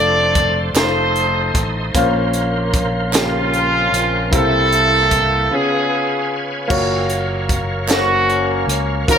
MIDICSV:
0, 0, Header, 1, 6, 480
1, 0, Start_track
1, 0, Tempo, 792602
1, 1179, Time_signature, 6, 3, 24, 8
1, 5561, End_track
2, 0, Start_track
2, 0, Title_t, "Tonewheel organ"
2, 0, Program_c, 0, 16
2, 0, Note_on_c, 0, 69, 56
2, 0, Note_on_c, 0, 72, 56
2, 0, Note_on_c, 0, 74, 55
2, 0, Note_on_c, 0, 84, 58
2, 446, Note_off_c, 0, 69, 0
2, 448, Note_off_c, 0, 74, 0
2, 451, Note_on_c, 0, 75, 51
2, 454, Note_on_c, 0, 69, 59
2, 1169, Note_off_c, 0, 75, 0
2, 1170, Note_off_c, 0, 69, 0
2, 1178, Note_on_c, 0, 70, 50
2, 1182, Note_on_c, 0, 58, 50
2, 2594, Note_off_c, 0, 72, 0
2, 2605, Note_off_c, 0, 70, 0
2, 2609, Note_on_c, 0, 76, 53
2, 2615, Note_on_c, 0, 79, 52
2, 3311, Note_off_c, 0, 84, 0
2, 3319, Note_off_c, 0, 58, 0
2, 3327, Note_off_c, 0, 76, 0
2, 3330, Note_off_c, 0, 79, 0
2, 3338, Note_on_c, 0, 77, 50
2, 3340, Note_on_c, 0, 71, 52
2, 3341, Note_on_c, 0, 73, 64
2, 3344, Note_on_c, 0, 80, 48
2, 4051, Note_off_c, 0, 77, 0
2, 4052, Note_off_c, 0, 71, 0
2, 4053, Note_off_c, 0, 73, 0
2, 4054, Note_off_c, 0, 80, 0
2, 4061, Note_on_c, 0, 73, 61
2, 4064, Note_on_c, 0, 70, 58
2, 4068, Note_on_c, 0, 77, 50
2, 5488, Note_off_c, 0, 77, 0
2, 5495, Note_off_c, 0, 73, 0
2, 5502, Note_on_c, 0, 73, 65
2, 5511, Note_on_c, 0, 75, 50
2, 5561, Note_off_c, 0, 70, 0
2, 5561, Note_off_c, 0, 73, 0
2, 5561, Note_off_c, 0, 75, 0
2, 5561, End_track
3, 0, Start_track
3, 0, Title_t, "Grand piano"
3, 0, Program_c, 1, 0
3, 0, Control_c, 1, 64, 127
3, 0, Note_on_c, 1, 57, 79
3, 0, Note_on_c, 1, 62, 69
3, 0, Note_on_c, 1, 65, 69
3, 0, Note_on_c, 1, 72, 82
3, 398, Note_off_c, 1, 57, 0
3, 401, Note_off_c, 1, 62, 0
3, 401, Note_off_c, 1, 65, 0
3, 405, Note_off_c, 1, 72, 0
3, 455, Note_on_c, 1, 57, 65
3, 461, Note_on_c, 1, 63, 51
3, 464, Note_on_c, 1, 65, 53
3, 465, Control_c, 1, 64, 0
3, 467, Note_on_c, 1, 70, 47
3, 501, Note_off_c, 1, 70, 0
3, 508, Note_on_c, 1, 72, 60
3, 554, Control_c, 1, 64, 127
3, 1120, Note_off_c, 1, 57, 0
3, 1123, Note_off_c, 1, 63, 0
3, 1125, Note_off_c, 1, 65, 0
3, 1147, Note_off_c, 1, 72, 0
3, 1182, Note_on_c, 1, 58, 99
3, 1186, Control_c, 1, 64, 0
3, 1187, Note_on_c, 1, 61, 82
3, 1188, Note_on_c, 1, 46, 70
3, 1193, Note_on_c, 1, 65, 87
3, 1193, Note_on_c, 1, 72, 97
3, 1279, Control_c, 1, 64, 127
3, 1844, Note_off_c, 1, 58, 0
3, 1846, Note_off_c, 1, 61, 0
3, 1849, Note_off_c, 1, 65, 0
3, 1849, Note_off_c, 1, 72, 0
3, 1880, Note_off_c, 1, 46, 0
3, 1891, Note_on_c, 1, 58, 62
3, 1894, Note_on_c, 1, 49, 55
3, 1898, Note_on_c, 1, 65, 53
3, 1904, Note_on_c, 1, 67, 62
3, 2558, Note_off_c, 1, 58, 0
3, 2559, Note_off_c, 1, 49, 0
3, 2562, Note_off_c, 1, 65, 0
3, 2564, Note_off_c, 1, 67, 0
3, 2612, Note_on_c, 1, 58, 76
3, 2613, Note_on_c, 1, 48, 61
3, 2615, Note_on_c, 1, 64, 66
3, 2617, Note_on_c, 1, 67, 68
3, 2622, Note_on_c, 1, 72, 78
3, 2629, Control_c, 1, 64, 0
3, 2750, Control_c, 1, 64, 127
3, 3278, Note_off_c, 1, 58, 0
3, 3280, Note_off_c, 1, 64, 0
3, 3281, Note_off_c, 1, 67, 0
3, 3283, Note_off_c, 1, 72, 0
3, 3312, Note_off_c, 1, 48, 0
3, 3337, Note_on_c, 1, 59, 57
3, 3339, Note_on_c, 1, 65, 51
3, 3344, Note_on_c, 1, 49, 56
3, 3347, Control_c, 1, 64, 0
3, 3347, Note_on_c, 1, 68, 54
3, 3348, Note_on_c, 1, 73, 56
3, 3447, Control_c, 1, 64, 127
3, 4000, Note_off_c, 1, 59, 0
3, 4001, Note_off_c, 1, 65, 0
3, 4005, Note_off_c, 1, 68, 0
3, 4005, Note_off_c, 1, 73, 0
3, 4037, Note_off_c, 1, 49, 0
3, 4043, Note_on_c, 1, 58, 85
3, 4049, Note_on_c, 1, 65, 79
3, 4052, Note_on_c, 1, 66, 86
3, 4058, Note_on_c, 1, 73, 95
3, 4066, Control_c, 1, 64, 0
3, 4163, Control_c, 1, 64, 127
3, 4713, Note_off_c, 1, 58, 0
3, 4715, Note_off_c, 1, 65, 0
3, 4717, Note_off_c, 1, 66, 0
3, 4720, Note_off_c, 1, 73, 0
3, 4768, Note_on_c, 1, 58, 57
3, 4774, Note_on_c, 1, 77, 48
3, 4778, Note_on_c, 1, 66, 57
3, 4782, Note_on_c, 1, 72, 53
3, 4819, Note_off_c, 1, 72, 0
3, 4824, Note_on_c, 1, 73, 65
3, 5435, Note_off_c, 1, 58, 0
3, 5438, Note_off_c, 1, 77, 0
3, 5440, Note_off_c, 1, 66, 0
3, 5463, Note_off_c, 1, 73, 0
3, 5498, Note_on_c, 1, 58, 81
3, 5502, Note_on_c, 1, 51, 57
3, 5502, Note_on_c, 1, 66, 68
3, 5503, Note_on_c, 1, 63, 66
3, 5506, Control_c, 1, 64, 0
3, 5506, Note_on_c, 1, 72, 68
3, 5541, Note_off_c, 1, 72, 0
3, 5561, Note_off_c, 1, 51, 0
3, 5561, Note_off_c, 1, 58, 0
3, 5561, Note_off_c, 1, 63, 0
3, 5561, Note_off_c, 1, 66, 0
3, 5561, End_track
4, 0, Start_track
4, 0, Title_t, "Horn section"
4, 0, Program_c, 2, 61
4, 0, Note_on_c, 2, 69, 73
4, 0, Note_on_c, 2, 74, 107
4, 363, Note_off_c, 2, 69, 0
4, 363, Note_off_c, 2, 74, 0
4, 465, Note_on_c, 2, 63, 74
4, 466, Note_on_c, 2, 69, 71
4, 467, Note_on_c, 2, 72, 97
4, 1003, Note_off_c, 2, 72, 0
4, 1159, Note_off_c, 2, 63, 0
4, 1159, Note_off_c, 2, 69, 0
4, 1911, Note_on_c, 2, 65, 97
4, 1917, Note_on_c, 2, 61, 69
4, 1921, Note_on_c, 2, 60, 69
4, 2602, Note_off_c, 2, 65, 0
4, 2604, Note_off_c, 2, 61, 0
4, 2606, Note_off_c, 2, 60, 0
4, 2630, Note_on_c, 2, 64, 84
4, 2632, Note_on_c, 2, 69, 112
4, 3320, Note_off_c, 2, 64, 0
4, 3346, Note_off_c, 2, 69, 0
4, 3347, Note_on_c, 2, 65, 73
4, 3351, Note_on_c, 2, 59, 69
4, 3354, Note_on_c, 2, 68, 86
4, 3887, Note_off_c, 2, 68, 0
4, 4039, Note_off_c, 2, 65, 0
4, 4040, Note_off_c, 2, 59, 0
4, 4795, Note_on_c, 2, 61, 87
4, 4796, Note_on_c, 2, 66, 107
4, 4798, Note_on_c, 2, 58, 85
4, 5243, Note_off_c, 2, 66, 0
4, 5482, Note_off_c, 2, 61, 0
4, 5483, Note_off_c, 2, 58, 0
4, 5508, Note_on_c, 2, 61, 84
4, 5512, Note_on_c, 2, 70, 113
4, 5514, Note_on_c, 2, 66, 86
4, 5561, Note_off_c, 2, 61, 0
4, 5561, Note_off_c, 2, 66, 0
4, 5561, Note_off_c, 2, 70, 0
4, 5561, End_track
5, 0, Start_track
5, 0, Title_t, "Fingered electric bass"
5, 0, Program_c, 3, 33
5, 0, Note_on_c, 3, 29, 112
5, 433, Note_off_c, 3, 29, 0
5, 446, Note_on_c, 3, 29, 92
5, 909, Note_off_c, 3, 29, 0
5, 932, Note_on_c, 3, 33, 87
5, 1157, Note_off_c, 3, 33, 0
5, 1177, Note_on_c, 3, 34, 105
5, 2355, Note_off_c, 3, 34, 0
5, 2375, Note_on_c, 3, 34, 92
5, 2619, Note_off_c, 3, 34, 0
5, 2619, Note_on_c, 3, 36, 86
5, 3315, Note_off_c, 3, 36, 0
5, 4059, Note_on_c, 3, 30, 90
5, 5234, Note_off_c, 3, 30, 0
5, 5251, Note_on_c, 3, 37, 92
5, 5475, Note_off_c, 3, 37, 0
5, 5498, Note_on_c, 3, 39, 92
5, 5561, Note_off_c, 3, 39, 0
5, 5561, End_track
6, 0, Start_track
6, 0, Title_t, "Drums"
6, 214, Note_on_c, 9, 36, 90
6, 214, Note_on_c, 9, 42, 71
6, 274, Note_off_c, 9, 42, 0
6, 275, Note_off_c, 9, 36, 0
6, 457, Note_on_c, 9, 39, 84
6, 457, Note_on_c, 9, 42, 94
6, 464, Note_on_c, 9, 38, 108
6, 517, Note_off_c, 9, 39, 0
6, 517, Note_off_c, 9, 42, 0
6, 524, Note_off_c, 9, 38, 0
6, 700, Note_on_c, 9, 42, 45
6, 761, Note_off_c, 9, 42, 0
6, 938, Note_on_c, 9, 36, 96
6, 940, Note_on_c, 9, 42, 75
6, 998, Note_off_c, 9, 36, 0
6, 1000, Note_off_c, 9, 42, 0
6, 1178, Note_on_c, 9, 36, 95
6, 1180, Note_on_c, 9, 42, 95
6, 1239, Note_off_c, 9, 36, 0
6, 1241, Note_off_c, 9, 42, 0
6, 1414, Note_on_c, 9, 42, 52
6, 1474, Note_off_c, 9, 42, 0
6, 1657, Note_on_c, 9, 42, 73
6, 1658, Note_on_c, 9, 36, 90
6, 1717, Note_off_c, 9, 42, 0
6, 1718, Note_off_c, 9, 36, 0
6, 1896, Note_on_c, 9, 39, 93
6, 1902, Note_on_c, 9, 42, 95
6, 1908, Note_on_c, 9, 38, 110
6, 1957, Note_off_c, 9, 39, 0
6, 1962, Note_off_c, 9, 42, 0
6, 1969, Note_off_c, 9, 38, 0
6, 2141, Note_on_c, 9, 42, 43
6, 2202, Note_off_c, 9, 42, 0
6, 2386, Note_on_c, 9, 42, 79
6, 2447, Note_off_c, 9, 42, 0
6, 2620, Note_on_c, 9, 36, 109
6, 2620, Note_on_c, 9, 42, 84
6, 2680, Note_off_c, 9, 42, 0
6, 2681, Note_off_c, 9, 36, 0
6, 2862, Note_on_c, 9, 42, 56
6, 2922, Note_off_c, 9, 42, 0
6, 3096, Note_on_c, 9, 42, 74
6, 3097, Note_on_c, 9, 36, 76
6, 3156, Note_off_c, 9, 42, 0
6, 3158, Note_off_c, 9, 36, 0
6, 4059, Note_on_c, 9, 36, 109
6, 4060, Note_on_c, 9, 49, 92
6, 4119, Note_off_c, 9, 36, 0
6, 4121, Note_off_c, 9, 49, 0
6, 4297, Note_on_c, 9, 42, 53
6, 4358, Note_off_c, 9, 42, 0
6, 4538, Note_on_c, 9, 36, 86
6, 4541, Note_on_c, 9, 42, 79
6, 4599, Note_off_c, 9, 36, 0
6, 4602, Note_off_c, 9, 42, 0
6, 4774, Note_on_c, 9, 39, 102
6, 4782, Note_on_c, 9, 42, 88
6, 4789, Note_on_c, 9, 38, 116
6, 4834, Note_off_c, 9, 39, 0
6, 4843, Note_off_c, 9, 42, 0
6, 4849, Note_off_c, 9, 38, 0
6, 5024, Note_on_c, 9, 42, 43
6, 5085, Note_off_c, 9, 42, 0
6, 5265, Note_on_c, 9, 42, 78
6, 5326, Note_off_c, 9, 42, 0
6, 5501, Note_on_c, 9, 36, 109
6, 5504, Note_on_c, 9, 42, 86
6, 5561, Note_off_c, 9, 36, 0
6, 5561, Note_off_c, 9, 42, 0
6, 5561, End_track
0, 0, End_of_file